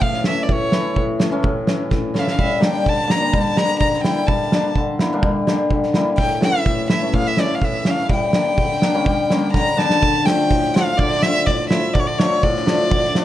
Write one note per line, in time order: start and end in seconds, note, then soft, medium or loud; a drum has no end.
0.00 0.47 A2 medium
0.00 0.26 E3 medium
0.00 0.26 F5 medium
0.00 kick medium
0.13 snare soft
0.24 0.71 E3 medium
0.24 0.38 A3 medium
0.24 0.38 C#4 medium
0.24 0.44 E5 medium
0.24 snare medium
0.43 0.53 D5 medium
0.48 0.95 A2 medium
0.48 0.98 C#5 medium
0.48 kick medium
0.72 1.30 E3 medium
0.72 0.85 A3 medium
0.72 0.85 E4 medium
0.72 snare medium
0.96 1.42 A2 medium
0.96 kick medium
1.19 1.26 A3 medium
1.19 1.26 C#4 medium
1.19 snare medium
1.31 1.66 E3 medium
1.31 1.44 A3 medium
1.31 1.44 C#4 medium
1.43 1.89 A2 medium
1.43 kick medium
1.67 2.13 E3 medium
1.67 1.79 A3 medium
1.67 1.79 C#4 medium
1.67 snare medium
1.90 2.43 A2 medium
1.90 kick medium
1.90 snare soft
2.14 2.43 E3 medium
2.14 2.26 A3 medium
2.14 2.26 C#4 medium
2.14 snare medium
2.19 2.32 E5 medium
2.19 2.21 F5 medium
2.28 2.42 F5 medium
2.28 snare medium
2.39 2.59 G3 medium
2.39 2.63 E5 medium
2.39 kick medium
2.59 2.91 G3 medium
2.59 2.73 A#3 medium
2.59 2.73 D4 medium
2.59 snare medium
2.65 2.90 G5 medium
2.83 3.79 D3 medium
2.83 kick medium
2.89 3.12 A5 medium
3.07 3.14 A#3 medium
3.07 3.14 D4 medium
3.07 3.35 A#5 medium
3.07 snare medium
3.20 3.32 G3 medium
3.20 3.32 A#3 medium
3.20 3.33 D4 medium
3.33 3.56 G3 medium
3.33 3.59 A5 medium
3.33 kick medium
3.56 3.85 G3 medium
3.56 3.68 A#3 soft
3.56 3.68 D4 medium
3.56 3.79 A#5 loud
3.56 snare medium
3.80 4.77 D3 medium
3.80 4.02 A#5 medium
3.80 kick medium
3.93 snare soft
4.04 4.27 G3 medium
4.04 4.16 A#3 soft
4.04 4.16 E4 medium
4.04 4.28 G5 medium
4.04 snare medium
4.27 4.53 G3 medium
4.27 4.75 A5 medium
4.27 kick medium
4.52 4.80 G3 medium
4.52 4.65 A#3 medium
4.52 4.64 D4 medium
4.52 snare medium
4.75 5.71 D3 medium
4.75 kick medium
4.99 5.06 A#3 medium
4.99 5.05 E4 medium
4.99 snare medium
5.13 5.22 G3 medium
5.13 5.24 A#3 medium
5.13 5.24 D4 medium
5.23 5.46 G3 medium
5.23 kick medium
5.47 5.75 G3 medium
5.47 5.59 A#3 medium
5.47 5.59 D4 medium
5.47 snare medium
5.71 6.23 D3 medium
5.71 kick medium
5.83 snare soft
5.94 6.23 G3 medium
5.94 6.07 A#3 medium
5.94 6.07 E4 medium
5.94 snare medium
6.18 6.65 A2 medium
6.18 6.40 G5 medium
6.18 kick medium
6.40 7.01 E3 medium
6.40 6.53 A3 medium
6.40 6.53 C#4 medium
6.40 snare medium
6.44 6.88 E5 medium
6.66 7.13 A2 medium
6.66 kick medium
6.89 6.95 A3 medium
6.89 6.96 E4 medium
6.89 7.12 E5 medium
6.89 snare medium
7.02 7.36 E3 medium
7.02 7.14 A3 medium
7.02 7.14 C#4 medium
7.14 7.60 A2 medium
7.14 7.29 F5 medium
7.14 kick medium
7.27 7.42 E5 medium
7.37 7.86 E3 soft
7.37 7.49 A3 medium
7.37 7.49 C#4 medium
7.37 7.56 D5 medium
7.37 snare medium
7.55 7.65 F5 medium
7.61 8.14 A2 medium
7.61 7.92 E5 medium
7.61 kick medium
7.85 8.14 E3 medium
7.85 7.98 A3 medium
7.85 7.98 C#4 medium
7.85 snare medium
7.90 8.12 F5 medium
8.09 8.33 G3 medium
8.09 9.51 G5 medium
8.09 kick medium
8.33 8.62 G3 medium
8.33 8.46 A#3 medium
8.33 8.46 D4 medium
8.33 snare medium
8.58 9.52 D3 medium
8.58 kick medium
8.82 8.88 A#3 medium
8.82 8.88 D4 medium
8.82 snare medium
8.94 9.05 G3 medium
8.94 9.06 A#3 medium
8.94 9.06 C#4 medium
9.06 9.29 G3 medium
9.06 kick medium
9.30 9.58 G3 medium
9.30 9.42 A#3 medium
9.30 9.42 C#4 medium
9.30 snare medium
9.53 10.00 D3 medium
9.53 9.79 A#5 medium
9.53 kick medium
9.53 snare soft
9.77 10.06 G3 medium
9.77 9.89 A#3 medium
9.77 9.89 D4 medium
9.77 10.28 A5 loud
9.77 snare medium
9.90 snare medium
10.01 10.55 D3 medium
10.01 kick medium
10.24 10.74 F3 medium
10.24 10.37 A3 medium
10.24 10.37 D4 medium
10.24 10.76 G5 medium
10.24 snare medium
10.48 11.03 A2 medium
10.48 kick medium
10.74 11.03 F3 medium
10.74 10.86 A3 medium
10.74 10.87 F4 medium
10.74 10.99 F5 medium
10.74 snare medium
10.98 11.51 D3 medium
10.98 11.25 D5 medium
10.98 kick medium
11.12 snare soft
11.23 11.69 F3 medium
11.23 11.35 A3 medium
11.23 11.35 D4 medium
11.23 11.48 E5 loud
11.23 snare medium
11.46 12.00 A2 medium
11.46 11.69 D5 medium
11.46 kick medium
11.70 11.99 F3 medium
11.70 11.83 A3 medium
11.70 11.82 E4 medium
11.70 11.95 E5 medium
11.70 snare medium
11.94 12.48 D3 medium
11.94 12.01 D5 medium
11.94 kick medium
11.99 12.08 C#5 medium
12.07 12.20 D5 medium
12.18 12.65 F3 medium
12.18 12.32 A3 medium
12.18 12.32 D4 medium
12.18 12.45 C#5 medium
12.18 snare medium
12.43 12.96 A2 medium
12.43 13.25 D5 medium
12.43 kick medium
12.56 snare soft
12.66 12.96 F3 medium
12.66 12.79 A3 medium
12.66 12.79 D4 medium
12.66 snare medium
12.90 13.25 D3 medium
12.90 kick medium
13.05 snare soft
13.15 13.25 F3 medium
13.15 13.25 A3 medium
13.15 13.25 D4 medium
13.15 snare medium